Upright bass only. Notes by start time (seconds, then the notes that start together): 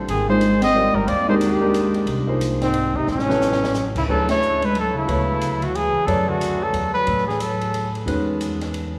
0.08 G#1
0.94 G1
1.08 D#2
2.06 C2
2.94 G#1
3.07 A1
4.08 D2
5.07 D2
5.94 muted upright bass stroke
6.07 F#2
6.73 E2
7.07 A2
8.06 E2